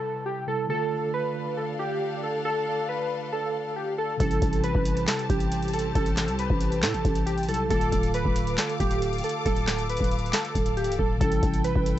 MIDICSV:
0, 0, Header, 1, 7, 480
1, 0, Start_track
1, 0, Key_signature, 0, "minor"
1, 0, Tempo, 437956
1, 765, Time_signature, 4, 2, 24, 8
1, 13141, End_track
2, 0, Start_track
2, 0, Title_t, "String section"
2, 0, Program_c, 0, 48
2, 764, Note_on_c, 0, 62, 84
2, 764, Note_on_c, 0, 69, 76
2, 765, Note_on_c, 0, 77, 93
2, 4566, Note_off_c, 0, 62, 0
2, 4566, Note_off_c, 0, 69, 0
2, 4566, Note_off_c, 0, 77, 0
2, 4606, Note_on_c, 0, 60, 80
2, 4606, Note_on_c, 0, 67, 84
2, 4606, Note_on_c, 0, 81, 93
2, 8407, Note_off_c, 0, 60, 0
2, 8407, Note_off_c, 0, 67, 0
2, 8407, Note_off_c, 0, 81, 0
2, 8445, Note_on_c, 0, 69, 88
2, 8445, Note_on_c, 0, 77, 78
2, 8445, Note_on_c, 0, 86, 99
2, 12247, Note_off_c, 0, 77, 0
2, 12247, Note_off_c, 0, 86, 0
2, 12286, Note_on_c, 0, 79, 79
2, 13141, Note_off_c, 0, 69, 0
2, 13141, Note_off_c, 0, 79, 0
2, 13141, End_track
3, 0, Start_track
3, 0, Title_t, "Synth keys"
3, 0, Program_c, 1, 88
3, 0, Note_on_c, 1, 69, 83
3, 254, Note_off_c, 1, 69, 0
3, 281, Note_on_c, 1, 67, 78
3, 477, Note_off_c, 1, 67, 0
3, 524, Note_on_c, 1, 69, 87
3, 718, Note_off_c, 1, 69, 0
3, 765, Note_on_c, 1, 69, 110
3, 1216, Note_off_c, 1, 69, 0
3, 1246, Note_on_c, 1, 71, 93
3, 1697, Note_off_c, 1, 71, 0
3, 1722, Note_on_c, 1, 69, 74
3, 1917, Note_off_c, 1, 69, 0
3, 1964, Note_on_c, 1, 67, 88
3, 2415, Note_off_c, 1, 67, 0
3, 2447, Note_on_c, 1, 69, 76
3, 2640, Note_off_c, 1, 69, 0
3, 2685, Note_on_c, 1, 69, 107
3, 3136, Note_off_c, 1, 69, 0
3, 3164, Note_on_c, 1, 71, 77
3, 3616, Note_off_c, 1, 71, 0
3, 3644, Note_on_c, 1, 69, 82
3, 4096, Note_off_c, 1, 69, 0
3, 4123, Note_on_c, 1, 67, 79
3, 4318, Note_off_c, 1, 67, 0
3, 4364, Note_on_c, 1, 69, 83
3, 4559, Note_off_c, 1, 69, 0
3, 4600, Note_on_c, 1, 69, 108
3, 5053, Note_off_c, 1, 69, 0
3, 5081, Note_on_c, 1, 71, 93
3, 5534, Note_off_c, 1, 71, 0
3, 5561, Note_on_c, 1, 69, 76
3, 5757, Note_off_c, 1, 69, 0
3, 5804, Note_on_c, 1, 67, 88
3, 6256, Note_off_c, 1, 67, 0
3, 6287, Note_on_c, 1, 69, 77
3, 6480, Note_off_c, 1, 69, 0
3, 6523, Note_on_c, 1, 69, 100
3, 6975, Note_off_c, 1, 69, 0
3, 7007, Note_on_c, 1, 71, 83
3, 7457, Note_off_c, 1, 71, 0
3, 7482, Note_on_c, 1, 69, 88
3, 7934, Note_off_c, 1, 69, 0
3, 7960, Note_on_c, 1, 67, 83
3, 8156, Note_off_c, 1, 67, 0
3, 8203, Note_on_c, 1, 69, 93
3, 8398, Note_off_c, 1, 69, 0
3, 8443, Note_on_c, 1, 69, 122
3, 8895, Note_off_c, 1, 69, 0
3, 8925, Note_on_c, 1, 71, 100
3, 9376, Note_off_c, 1, 71, 0
3, 9402, Note_on_c, 1, 69, 76
3, 9597, Note_off_c, 1, 69, 0
3, 9643, Note_on_c, 1, 67, 93
3, 10095, Note_off_c, 1, 67, 0
3, 10126, Note_on_c, 1, 69, 80
3, 10320, Note_off_c, 1, 69, 0
3, 10364, Note_on_c, 1, 69, 109
3, 10816, Note_off_c, 1, 69, 0
3, 10844, Note_on_c, 1, 71, 83
3, 11295, Note_off_c, 1, 71, 0
3, 11324, Note_on_c, 1, 69, 88
3, 11775, Note_off_c, 1, 69, 0
3, 11803, Note_on_c, 1, 67, 84
3, 11998, Note_off_c, 1, 67, 0
3, 12044, Note_on_c, 1, 69, 89
3, 12238, Note_off_c, 1, 69, 0
3, 12279, Note_on_c, 1, 69, 108
3, 12733, Note_off_c, 1, 69, 0
3, 12761, Note_on_c, 1, 71, 94
3, 13141, Note_off_c, 1, 71, 0
3, 13141, End_track
4, 0, Start_track
4, 0, Title_t, "Tine electric piano"
4, 0, Program_c, 2, 4
4, 0, Control_c, 2, 64, 127
4, 0, Note_on_c, 2, 48, 62
4, 0, Note_on_c, 2, 55, 60
4, 0, Note_on_c, 2, 64, 63
4, 0, Note_on_c, 2, 69, 68
4, 465, Note_off_c, 2, 48, 0
4, 476, Note_off_c, 2, 55, 0
4, 487, Note_off_c, 2, 64, 0
4, 498, Note_off_c, 2, 69, 0
4, 511, Note_on_c, 2, 48, 51
4, 522, Note_on_c, 2, 55, 46
4, 534, Note_on_c, 2, 64, 46
4, 544, Note_on_c, 2, 69, 56
4, 733, Note_on_c, 2, 50, 63
4, 756, Note_on_c, 2, 57, 59
4, 758, Note_off_c, 2, 48, 0
4, 763, Note_off_c, 2, 55, 0
4, 769, Note_off_c, 2, 64, 0
4, 775, Note_off_c, 2, 69, 0
4, 777, Control_c, 2, 64, 0
4, 778, Note_on_c, 2, 65, 62
4, 801, Note_on_c, 2, 69, 73
4, 990, Control_c, 2, 64, 127
4, 4545, Note_off_c, 2, 50, 0
4, 4557, Note_off_c, 2, 57, 0
4, 4568, Note_off_c, 2, 65, 0
4, 4572, Note_on_c, 2, 48, 67
4, 4579, Note_off_c, 2, 69, 0
4, 4594, Note_on_c, 2, 55, 64
4, 4617, Control_c, 2, 64, 0
4, 4617, Note_on_c, 2, 64, 67
4, 4639, Note_on_c, 2, 69, 73
4, 4777, Control_c, 2, 64, 127
4, 8145, Note_off_c, 2, 48, 0
4, 8156, Note_off_c, 2, 55, 0
4, 8167, Note_off_c, 2, 64, 0
4, 8178, Note_off_c, 2, 69, 0
4, 8191, Note_on_c, 2, 48, 53
4, 8201, Note_on_c, 2, 55, 46
4, 8213, Note_on_c, 2, 64, 48
4, 8224, Note_on_c, 2, 69, 61
4, 8413, Note_on_c, 2, 50, 70
4, 8435, Note_on_c, 2, 57, 61
4, 8438, Note_off_c, 2, 48, 0
4, 8443, Note_off_c, 2, 55, 0
4, 8449, Note_off_c, 2, 64, 0
4, 8454, Note_off_c, 2, 69, 0
4, 8457, Note_on_c, 2, 65, 64
4, 8459, Control_c, 2, 64, 0
4, 8480, Note_on_c, 2, 69, 76
4, 8617, Control_c, 2, 64, 127
4, 12225, Note_off_c, 2, 50, 0
4, 12236, Note_off_c, 2, 57, 0
4, 12247, Note_off_c, 2, 65, 0
4, 12253, Note_on_c, 2, 48, 68
4, 12258, Note_off_c, 2, 69, 0
4, 12275, Note_on_c, 2, 55, 63
4, 12297, Note_on_c, 2, 64, 68
4, 12299, Control_c, 2, 64, 0
4, 12319, Note_on_c, 2, 69, 72
4, 12510, Control_c, 2, 64, 127
4, 13141, Note_off_c, 2, 48, 0
4, 13141, Note_off_c, 2, 55, 0
4, 13141, Note_off_c, 2, 64, 0
4, 13141, Note_off_c, 2, 69, 0
4, 13141, End_track
5, 0, Start_track
5, 0, Title_t, "808-style bass"
5, 0, Program_c, 3, 38
5, 4605, Note_on_c, 3, 33, 113
5, 4835, Note_off_c, 3, 33, 0
5, 4844, Note_on_c, 3, 33, 109
5, 5190, Note_off_c, 3, 33, 0
5, 5204, Note_on_c, 3, 33, 104
5, 5550, Note_off_c, 3, 33, 0
5, 5805, Note_on_c, 3, 33, 99
5, 6496, Note_off_c, 3, 33, 0
5, 6525, Note_on_c, 3, 33, 111
5, 6885, Note_on_c, 3, 36, 100
5, 6901, Note_off_c, 3, 33, 0
5, 7113, Note_off_c, 3, 36, 0
5, 7124, Note_on_c, 3, 33, 109
5, 7485, Note_on_c, 3, 45, 101
5, 7501, Note_off_c, 3, 33, 0
5, 7604, Note_on_c, 3, 33, 103
5, 7621, Note_off_c, 3, 45, 0
5, 7718, Note_off_c, 3, 33, 0
5, 7725, Note_on_c, 3, 33, 108
5, 8204, Note_on_c, 3, 35, 102
5, 8220, Note_off_c, 3, 33, 0
5, 8432, Note_off_c, 3, 35, 0
5, 8444, Note_on_c, 3, 26, 116
5, 8675, Note_off_c, 3, 26, 0
5, 8684, Note_on_c, 3, 26, 109
5, 9030, Note_off_c, 3, 26, 0
5, 9044, Note_on_c, 3, 26, 107
5, 9390, Note_off_c, 3, 26, 0
5, 9645, Note_on_c, 3, 26, 105
5, 10106, Note_off_c, 3, 26, 0
5, 10365, Note_on_c, 3, 26, 114
5, 10941, Note_off_c, 3, 26, 0
5, 10964, Note_on_c, 3, 26, 104
5, 11310, Note_off_c, 3, 26, 0
5, 11565, Note_on_c, 3, 26, 106
5, 11924, Note_on_c, 3, 24, 102
5, 11941, Note_off_c, 3, 26, 0
5, 12039, Note_off_c, 3, 24, 0
5, 12044, Note_on_c, 3, 26, 106
5, 12275, Note_off_c, 3, 26, 0
5, 12285, Note_on_c, 3, 33, 112
5, 12515, Note_off_c, 3, 33, 0
5, 12524, Note_on_c, 3, 33, 108
5, 12870, Note_off_c, 3, 33, 0
5, 12884, Note_on_c, 3, 33, 103
5, 13141, Note_off_c, 3, 33, 0
5, 13141, End_track
6, 0, Start_track
6, 0, Title_t, "Downlifter"
6, 0, Program_c, 4, 103
6, 0, Note_on_c, 4, 60, 83
6, 765, Note_off_c, 4, 60, 0
6, 13141, End_track
7, 0, Start_track
7, 0, Title_t, "Drums"
7, 4605, Note_on_c, 9, 36, 100
7, 4605, Note_on_c, 9, 42, 90
7, 4715, Note_off_c, 9, 36, 0
7, 4715, Note_off_c, 9, 42, 0
7, 4722, Note_on_c, 9, 42, 59
7, 4831, Note_off_c, 9, 42, 0
7, 4844, Note_on_c, 9, 36, 99
7, 4844, Note_on_c, 9, 42, 86
7, 4953, Note_off_c, 9, 36, 0
7, 4954, Note_off_c, 9, 42, 0
7, 4963, Note_on_c, 9, 42, 59
7, 5072, Note_off_c, 9, 42, 0
7, 5081, Note_on_c, 9, 42, 73
7, 5191, Note_off_c, 9, 42, 0
7, 5204, Note_on_c, 9, 36, 103
7, 5314, Note_off_c, 9, 36, 0
7, 5320, Note_on_c, 9, 42, 94
7, 5430, Note_off_c, 9, 42, 0
7, 5445, Note_on_c, 9, 42, 59
7, 5554, Note_off_c, 9, 42, 0
7, 5562, Note_on_c, 9, 39, 98
7, 5565, Note_on_c, 9, 38, 121
7, 5567, Note_on_c, 9, 42, 75
7, 5672, Note_off_c, 9, 39, 0
7, 5675, Note_off_c, 9, 38, 0
7, 5676, Note_off_c, 9, 42, 0
7, 5689, Note_on_c, 9, 42, 57
7, 5799, Note_off_c, 9, 42, 0
7, 5805, Note_on_c, 9, 36, 97
7, 5806, Note_on_c, 9, 42, 78
7, 5914, Note_off_c, 9, 36, 0
7, 5916, Note_off_c, 9, 42, 0
7, 5922, Note_on_c, 9, 42, 61
7, 6031, Note_off_c, 9, 42, 0
7, 6046, Note_on_c, 9, 42, 85
7, 6156, Note_off_c, 9, 42, 0
7, 6165, Note_on_c, 9, 42, 47
7, 6225, Note_off_c, 9, 42, 0
7, 6225, Note_on_c, 9, 42, 57
7, 6285, Note_off_c, 9, 42, 0
7, 6285, Note_on_c, 9, 42, 68
7, 6345, Note_off_c, 9, 42, 0
7, 6345, Note_on_c, 9, 42, 78
7, 6454, Note_off_c, 9, 42, 0
7, 6525, Note_on_c, 9, 36, 104
7, 6525, Note_on_c, 9, 42, 87
7, 6635, Note_off_c, 9, 36, 0
7, 6635, Note_off_c, 9, 42, 0
7, 6642, Note_on_c, 9, 42, 60
7, 6752, Note_off_c, 9, 42, 0
7, 6762, Note_on_c, 9, 39, 73
7, 6765, Note_on_c, 9, 38, 92
7, 6765, Note_on_c, 9, 42, 88
7, 6871, Note_off_c, 9, 39, 0
7, 6874, Note_off_c, 9, 38, 0
7, 6875, Note_off_c, 9, 42, 0
7, 6883, Note_on_c, 9, 42, 61
7, 6993, Note_off_c, 9, 42, 0
7, 7001, Note_on_c, 9, 42, 73
7, 7111, Note_off_c, 9, 42, 0
7, 7124, Note_on_c, 9, 36, 103
7, 7234, Note_off_c, 9, 36, 0
7, 7240, Note_on_c, 9, 42, 92
7, 7349, Note_off_c, 9, 42, 0
7, 7364, Note_on_c, 9, 42, 62
7, 7474, Note_off_c, 9, 42, 0
7, 7481, Note_on_c, 9, 39, 97
7, 7484, Note_on_c, 9, 38, 122
7, 7486, Note_on_c, 9, 42, 72
7, 7591, Note_off_c, 9, 39, 0
7, 7594, Note_off_c, 9, 38, 0
7, 7596, Note_off_c, 9, 42, 0
7, 7609, Note_on_c, 9, 42, 57
7, 7718, Note_off_c, 9, 42, 0
7, 7725, Note_on_c, 9, 36, 97
7, 7726, Note_on_c, 9, 42, 82
7, 7834, Note_off_c, 9, 36, 0
7, 7836, Note_off_c, 9, 42, 0
7, 7841, Note_on_c, 9, 42, 64
7, 7950, Note_off_c, 9, 42, 0
7, 7966, Note_on_c, 9, 42, 83
7, 8075, Note_off_c, 9, 42, 0
7, 8084, Note_on_c, 9, 42, 46
7, 8144, Note_off_c, 9, 42, 0
7, 8144, Note_on_c, 9, 42, 56
7, 8204, Note_off_c, 9, 42, 0
7, 8204, Note_on_c, 9, 42, 67
7, 8264, Note_off_c, 9, 42, 0
7, 8264, Note_on_c, 9, 42, 77
7, 8374, Note_off_c, 9, 42, 0
7, 8445, Note_on_c, 9, 36, 104
7, 8445, Note_on_c, 9, 42, 90
7, 8554, Note_off_c, 9, 36, 0
7, 8554, Note_off_c, 9, 42, 0
7, 8562, Note_on_c, 9, 42, 59
7, 8671, Note_off_c, 9, 42, 0
7, 8684, Note_on_c, 9, 36, 99
7, 8684, Note_on_c, 9, 42, 87
7, 8793, Note_off_c, 9, 36, 0
7, 8794, Note_off_c, 9, 42, 0
7, 8803, Note_on_c, 9, 42, 59
7, 8913, Note_off_c, 9, 42, 0
7, 8922, Note_on_c, 9, 42, 73
7, 9031, Note_off_c, 9, 42, 0
7, 9044, Note_on_c, 9, 36, 99
7, 9154, Note_off_c, 9, 36, 0
7, 9160, Note_on_c, 9, 42, 92
7, 9270, Note_off_c, 9, 42, 0
7, 9284, Note_on_c, 9, 42, 60
7, 9394, Note_off_c, 9, 42, 0
7, 9401, Note_on_c, 9, 39, 98
7, 9404, Note_on_c, 9, 38, 123
7, 9406, Note_on_c, 9, 42, 75
7, 9511, Note_off_c, 9, 39, 0
7, 9514, Note_off_c, 9, 38, 0
7, 9516, Note_off_c, 9, 42, 0
7, 9529, Note_on_c, 9, 42, 59
7, 9639, Note_off_c, 9, 42, 0
7, 9645, Note_on_c, 9, 36, 97
7, 9647, Note_on_c, 9, 42, 82
7, 9755, Note_off_c, 9, 36, 0
7, 9757, Note_off_c, 9, 42, 0
7, 9763, Note_on_c, 9, 42, 64
7, 9872, Note_off_c, 9, 42, 0
7, 9887, Note_on_c, 9, 42, 87
7, 9997, Note_off_c, 9, 42, 0
7, 10005, Note_on_c, 9, 42, 47
7, 10065, Note_off_c, 9, 42, 0
7, 10065, Note_on_c, 9, 42, 57
7, 10126, Note_off_c, 9, 42, 0
7, 10126, Note_on_c, 9, 42, 66
7, 10185, Note_off_c, 9, 42, 0
7, 10185, Note_on_c, 9, 42, 78
7, 10295, Note_off_c, 9, 42, 0
7, 10365, Note_on_c, 9, 36, 105
7, 10366, Note_on_c, 9, 42, 86
7, 10474, Note_off_c, 9, 36, 0
7, 10475, Note_off_c, 9, 42, 0
7, 10482, Note_on_c, 9, 42, 58
7, 10592, Note_off_c, 9, 42, 0
7, 10602, Note_on_c, 9, 39, 74
7, 10605, Note_on_c, 9, 38, 97
7, 10605, Note_on_c, 9, 42, 87
7, 10711, Note_off_c, 9, 39, 0
7, 10714, Note_off_c, 9, 38, 0
7, 10715, Note_off_c, 9, 42, 0
7, 10724, Note_on_c, 9, 42, 60
7, 10833, Note_off_c, 9, 42, 0
7, 10845, Note_on_c, 9, 42, 76
7, 10925, Note_off_c, 9, 42, 0
7, 10925, Note_on_c, 9, 42, 68
7, 10964, Note_on_c, 9, 36, 100
7, 11005, Note_off_c, 9, 42, 0
7, 11005, Note_on_c, 9, 42, 65
7, 11074, Note_off_c, 9, 36, 0
7, 11085, Note_off_c, 9, 42, 0
7, 11085, Note_on_c, 9, 42, 58
7, 11165, Note_off_c, 9, 42, 0
7, 11165, Note_on_c, 9, 42, 52
7, 11245, Note_off_c, 9, 42, 0
7, 11245, Note_on_c, 9, 42, 47
7, 11322, Note_on_c, 9, 39, 99
7, 11325, Note_on_c, 9, 38, 119
7, 11327, Note_off_c, 9, 42, 0
7, 11327, Note_on_c, 9, 42, 76
7, 11432, Note_off_c, 9, 39, 0
7, 11435, Note_off_c, 9, 38, 0
7, 11436, Note_off_c, 9, 42, 0
7, 11449, Note_on_c, 9, 42, 59
7, 11559, Note_off_c, 9, 42, 0
7, 11565, Note_on_c, 9, 36, 96
7, 11567, Note_on_c, 9, 42, 78
7, 11674, Note_off_c, 9, 36, 0
7, 11676, Note_off_c, 9, 42, 0
7, 11682, Note_on_c, 9, 42, 64
7, 11791, Note_off_c, 9, 42, 0
7, 11805, Note_on_c, 9, 42, 55
7, 11885, Note_off_c, 9, 42, 0
7, 11885, Note_on_c, 9, 42, 71
7, 11965, Note_off_c, 9, 42, 0
7, 11965, Note_on_c, 9, 42, 88
7, 12044, Note_on_c, 9, 36, 96
7, 12075, Note_off_c, 9, 42, 0
7, 12154, Note_off_c, 9, 36, 0
7, 12285, Note_on_c, 9, 36, 101
7, 12286, Note_on_c, 9, 42, 86
7, 12395, Note_off_c, 9, 36, 0
7, 12395, Note_off_c, 9, 42, 0
7, 12402, Note_on_c, 9, 42, 58
7, 12512, Note_off_c, 9, 42, 0
7, 12524, Note_on_c, 9, 36, 95
7, 12525, Note_on_c, 9, 42, 90
7, 12633, Note_off_c, 9, 36, 0
7, 12635, Note_off_c, 9, 42, 0
7, 12644, Note_on_c, 9, 42, 60
7, 12753, Note_off_c, 9, 42, 0
7, 12762, Note_on_c, 9, 42, 72
7, 12871, Note_off_c, 9, 42, 0
7, 12884, Note_on_c, 9, 36, 99
7, 12994, Note_off_c, 9, 36, 0
7, 13001, Note_on_c, 9, 42, 95
7, 13110, Note_off_c, 9, 42, 0
7, 13141, End_track
0, 0, End_of_file